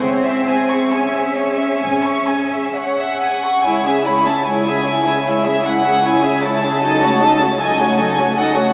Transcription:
0.02 0.76 C#2 soft
0.02 0.91 C4 medium
0.02 3.45 G#4 soft
0.02 0.24 C#5 soft
0.02 2.76 E5 soft
0.24 0.48 E5 soft
0.47 0.70 G#5 soft
0.71 0.93 C#6 soft
0.92 3.23 C#4 soft
0.92 1.15 G#5 soft
1.14 1.36 E5 soft
1.37 1.59 C#5 soft
1.58 1.81 E5 soft
1.82 2.59 G#1 medium
1.82 2.03 G#5 soft
2.04 2.29 C#6 soft
2.27 2.52 G#5 soft
2.52 2.76 E5 soft
2.75 2.99 C#5 soft
2.75 3.62 F#5 medium
2.98 3.22 E5 soft
3.22 3.44 G#5 soft
3.45 3.66 C#6 soft
3.64 8.73 C#2 soft
3.64 8.73 C#3 soft
3.64 3.85 G#3 soft
3.64 3.85 E4 soft
3.64 3.85 C#5 soft
3.64 4.06 G#5 medium
3.86 4.07 C#4 soft
3.86 4.07 G#4 soft
3.86 4.07 E5 soft
4.06 4.27 G#3 soft
4.06 4.27 E4 soft
4.06 4.27 C#5 soft
4.06 4.27 B5 medium
4.25 4.48 C#4 soft
4.25 4.46 G#4 soft
4.25 4.47 E5 soft
4.25 4.48 A5 medium
4.45 4.66 G#3 soft
4.45 4.65 E4 soft
4.45 4.66 E4 soft
4.45 4.65 C#5 soft
4.45 5.27 G#5 medium
4.66 4.88 C#4 soft
4.66 4.87 G#4 soft
4.66 4.87 E5 soft
4.85 5.07 G#3 soft
4.85 5.06 E4 soft
4.85 5.08 E4 soft
4.85 5.06 C#5 soft
5.05 5.27 C#4 soft
5.05 5.26 G#4 soft
5.05 5.26 E5 soft
5.24 5.43 E4 soft
5.24 5.45 E4 soft
5.24 5.43 C#5 soft
5.24 5.66 E5 medium
5.28 5.45 G#3 soft
5.44 5.66 C#4 soft
5.44 5.65 G#4 soft
5.44 5.65 E5 soft
5.63 5.86 G#3 soft
5.63 5.84 E4 soft
5.63 5.86 E4 soft
5.63 5.84 C#5 soft
5.68 6.06 F#5 medium
5.85 6.04 C#4 soft
5.85 6.04 G#4 soft
5.85 6.04 E5 soft
6.04 6.23 G#3 soft
6.04 6.23 E4 soft
6.04 6.22 C#5 soft
6.04 6.45 G#5 medium
6.22 6.44 C#4 soft
6.22 6.43 G#4 soft
6.22 6.43 E5 soft
6.43 6.64 G#3 soft
6.43 6.63 E4 soft
6.43 6.64 E4 soft
6.43 6.63 C#5 soft
6.43 7.59 A5 medium
6.62 6.84 C#4 soft
6.62 6.83 G#4 soft
6.62 6.83 E5 soft
6.82 7.01 F#3 soft
6.82 7.02 D#4 soft
6.82 7.02 A4 soft
6.82 7.02 D#5 soft
7.02 7.22 A3 soft
7.02 7.22 C#4 soft
7.02 7.23 F#4 soft
7.02 7.23 C#5 soft
7.22 7.42 F#3 soft
7.22 7.42 D#4 soft
7.22 7.42 A4 soft
7.22 7.42 D#5 soft
7.40 7.60 A3 soft
7.40 7.60 C#4 soft
7.40 7.61 F#4 soft
7.40 7.61 C#5 soft
7.61 7.79 F#3 soft
7.61 7.79 D#4 soft
7.61 7.79 A4 soft
7.61 7.79 D#5 soft
7.61 8.38 G#5 medium
7.80 7.99 A3 soft
7.80 7.99 C#4 soft
7.80 8.00 F#4 soft
7.80 8.00 C#5 soft
7.99 8.19 F#3 soft
7.99 8.19 D#4 soft
7.99 8.19 A4 soft
7.99 8.18 D#5 soft
8.18 8.38 A3 soft
8.18 8.38 C#4 soft
8.18 8.38 F#4 soft
8.18 8.38 C#5 soft
8.38 8.56 F#3 soft
8.38 8.56 D#4 soft
8.38 8.56 A4 soft
8.38 8.56 D#5 soft
8.38 8.73 F#5 medium
8.56 8.73 A3 soft
8.56 8.73 C#4 soft
8.56 8.73 F#4 soft
8.56 8.73 C#5 soft

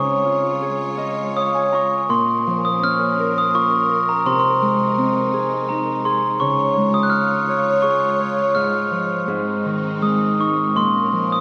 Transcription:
0.00 2.14 C#3 medium
0.00 2.05 G#3 medium
0.00 1.16 D#4 medium
0.00 2.07 F4 medium
0.00 0.61 G#4 medium
0.00 2.06 C#5 medium
0.00 1.29 C#6 medium
0.25 0.97 F4 soft
0.62 2.89 G#4 soft
0.97 1.73 F4 soft
0.97 2.76 D#5 medium
1.36 3.27 C#5 soft
1.36 3.03 F5 medium
1.36 1.53 D#6 medium
1.54 3.04 G#5 medium
1.72 3.54 F4 soft
1.72 3.12 A#5 medium
1.72 1.91 C#6 medium
2.09 4.30 A#2 medium
2.09 4.23 A#3 medium
2.09 4.23 C#4 medium
2.09 6.37 A#4 medium
2.09 2.66 C6 medium
2.47 4.30 F3 soft
2.65 2.81 D#6 medium
2.82 4.32 C#4 medium
2.82 3.38 F6 medium
3.20 3.89 A#4 medium
3.38 3.46 D#6 medium
3.54 6.07 F4 medium
3.54 4.10 C#6 medium
3.90 6.02 A#4 medium
4.09 4.27 A#5 medium
4.26 6.38 C3 medium
4.26 6.45 C3 medium
4.26 11.40 G#3 medium
4.26 6.39 D#4 medium
4.26 4.32 C6 medium
4.32 4.39 A#5 medium
4.39 5.65 C6 medium
4.62 6.45 G#3 medium
4.98 6.47 C4 medium
5.34 6.05 G#4 medium
5.69 8.40 D#4 medium
5.69 6.02 A#5 medium
6.05 7.83 G#4 medium
6.05 6.21 C6 medium
6.40 8.61 C#3 medium
6.40 9.26 F4 medium
6.40 9.26 C#5 medium
6.40 6.90 C#6 medium
6.77 8.61 G#3 soft
6.94 7.05 D#6 medium
7.03 7.11 F#6 medium
7.10 9.65 F4 medium
7.10 7.85 F6 medium
7.48 8.19 C#5 medium
7.82 10.10 G#4 medium
7.82 8.57 C#6 medium
8.20 10.11 C#5 medium
8.55 9.26 G#2 medium
8.55 9.24 F6 medium
8.91 9.34 F3 soft
9.28 10.81 G#2 medium
9.28 10.75 C4 medium
9.28 10.75 D#4 medium
9.65 10.81 D#3 soft
10.02 10.81 G#3 medium
10.02 10.40 D#6 medium
10.39 11.40 D#4 medium
10.39 10.78 C#6 medium
10.75 11.40 A#2 medium
10.75 11.40 C#4 medium
10.75 11.40 A#4 medium
10.75 11.33 C6 medium
11.13 11.40 F3 soft
11.32 11.40 D#6 medium

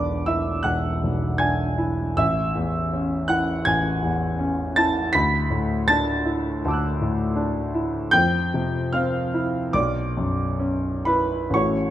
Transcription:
0.00 0.62 E1 soft
0.00 0.13 B1 soft
0.00 0.51 D4 soft
0.00 2.21 B4 medium
0.00 0.25 D5 medium
0.00 2.21 B5 medium
0.00 0.27 D6 medium
0.26 0.89 E4 soft
0.26 0.64 E5 medium
0.26 0.66 E6 medium
0.63 2.13 E1 soft
0.63 1.37 F#5 medium
0.63 1.40 F#6 medium
1.04 1.64 B1 soft
1.38 2.01 D4 soft
1.38 2.13 G#5 medium
1.38 2.17 G#6 medium
1.78 2.17 E4 soft
2.17 3.62 A1 medium
2.17 3.26 E5 medium
2.17 3.29 E6 medium
2.55 3.15 E2 soft
2.93 3.52 C#4 soft
3.28 3.87 E4 soft
3.28 3.63 F#5 medium
3.28 3.65 F#6 medium
3.65 5.10 A1 soft
3.65 4.73 G#5 medium
3.65 4.76 G#6 medium
4.03 4.62 E2 soft
4.39 4.99 C#4 medium
4.76 5.14 E4 medium
4.76 5.12 A5 medium
4.76 5.14 A6 loud
5.13 6.59 D2 medium
5.13 5.84 B5 medium
5.13 5.87 B6 loud
5.50 6.10 A2 medium
5.88 6.48 D4 soft
5.88 6.63 A5 medium
5.88 8.13 A6 loud
6.25 6.85 E4 medium
6.65 8.10 D2 medium
6.65 8.10 A5 soft
6.65 8.12 D6 soft
6.71 8.13 E6 soft
6.71 8.14 F#6 soft
7.01 7.58 A2 medium
7.36 7.96 D4 medium
7.74 8.14 E4 medium
8.11 9.70 F2 medium
8.11 8.90 G5 medium
8.11 8.93 G6 loud
8.54 9.18 C3 medium
8.93 9.57 C4 medium
8.93 9.70 F5 medium
8.93 9.73 F6 medium
9.34 9.74 E4 medium
9.73 11.49 B1 medium
9.73 11.01 D5 medium
9.73 11.05 D6 medium
10.17 10.87 F#2 soft
10.59 11.34 C#4 soft
11.05 11.52 E4 medium
11.05 11.51 B4 medium
11.05 11.54 B5 medium
11.50 11.90 A1 medium
11.50 11.90 A3 soft
11.50 11.90 C#4 soft
11.50 11.90 E4 soft
11.50 11.90 F#4 soft
11.50 11.90 C#6 medium
11.55 11.90 C#5 medium

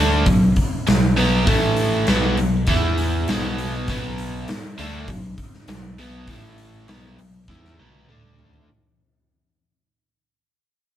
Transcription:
0.00 0.25 D2 medium
0.00 0.26 D3 medium
0.00 0.26 A3 medium
0.00 0.27 D4 loud
0.26 0.55 B1 medium
0.26 0.51 B2 medium
0.26 0.51 F#3 medium
0.26 kick loud
0.26 open hi-hat medium
0.56 kick medium
0.56 open hi-hat medium
0.87 1.16 B1 medium
0.87 1.11 B2 medium
0.87 1.12 F#3 medium
0.87 snare loud
0.87 open hi-hat medium
1.17 1.47 B1 medium
1.17 1.46 B2 medium
1.17 1.47 F#3 loud
1.17 1.47 B3 medium
1.17 open hi-hat medium
1.47 2.04 A1 medium
1.47 2.07 A2 medium
1.47 2.07 E3 loud
1.47 2.07 A3 loud
1.47 kick loud
1.47 open hi-hat medium
1.77 open hi-hat medium
2.07 2.36 B1 medium
2.07 2.37 B2 medium
2.07 2.38 F#3 medium
2.07 2.38 B3 loud
2.07 snare loud
2.07 open hi-hat medium
2.37 2.67 B1 medium
2.37 2.62 B2 medium
2.37 2.63 F#3 medium
2.37 open hi-hat medium
2.67 3.24 E2 medium
2.67 3.27 E3 loud
2.67 3.28 B3 medium
2.67 3.28 E4 loud
2.67 kick loud
2.67 open hi-hat medium
2.98 open hi-hat medium
3.28 3.85 B1 medium
3.28 3.88 B2 medium
3.28 3.88 F#3 loud
3.28 3.88 B3 loud
3.28 snare medium
3.28 open hi-hat medium
3.58 open hi-hat medium
3.88 4.44 B1 loud
3.88 4.48 B2 medium
3.88 4.48 F#3 loud
3.88 4.49 B3 loud
3.88 kick loud
3.88 open hi-hat medium
4.18 open hi-hat medium
4.48 muted picked electric bass stroke soft
4.48 muted overdriven electric guitar stroke medium
4.48 snare medium
4.48 open hi-hat medium
4.78 5.07 D2 loud
4.78 5.08 D3 medium
4.78 5.08 A3 medium
4.78 5.08 D4 loud
4.78 open hi-hat medium
5.08 5.36 B1 medium
5.08 5.33 B2 medium
5.08 5.33 F#3 medium
5.08 kick loud
5.08 open hi-hat medium
5.38 kick medium
5.38 open hi-hat medium
5.54 snare soft
5.68 5.96 B1 medium
5.68 5.93 B2 medium
5.68 5.93 F#3 medium
5.68 snare loud
5.68 open hi-hat medium
5.98 6.27 B1 medium
5.98 6.28 B2 medium
5.98 6.28 F#3 medium
5.98 6.28 B3 loud
5.98 open hi-hat medium
6.27 6.84 A1 medium
6.27 6.88 A2 medium
6.27 6.88 E3 loud
6.27 6.89 A3 loud
6.27 kick loud
6.27 open hi-hat medium
6.58 open hi-hat medium
6.88 7.17 B1 medium
6.88 7.18 B2 medium
6.88 7.18 F#3 loud
6.88 7.18 B3 loud
6.88 snare loud
6.88 open hi-hat medium
7.19 7.47 B1 medium
7.19 7.43 B2 medium
7.19 7.43 F#3 medium
7.19 open hi-hat medium
7.48 7.77 E2 medium
7.48 7.78 E3 medium
7.48 7.78 B3 medium
7.48 7.78 E4 loud
7.48 kick loud
7.48 snare medium
7.65 snare medium
7.78 8.07 B1 medium
7.78 8.08 B2 medium
7.78 8.08 F#3 medium
7.78 8.08 B3 medium
7.78 high tom medium
7.95 high tom medium
8.08 8.65 D2 medium
8.08 8.68 D3 medium
8.08 8.68 A3 medium
8.08 8.68 D4 loud
8.08 mid tom medium
8.24 mid tom medium
8.39 floor tom medium
8.53 floor tom medium

